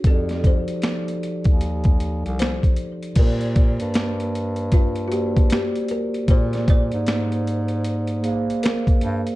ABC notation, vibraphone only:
X:1
M:4/4
L:1/8
Q:"Swing 16ths" 1/4=77
K:Bb
V:1 name="Vibraphone"
[F,EGAd] [F,EGAd]3 z4 | [B,Gcd]3 z2 [B,Gcd]2 z | [B,_Acd]3 z2 [B,Acf]2 z |]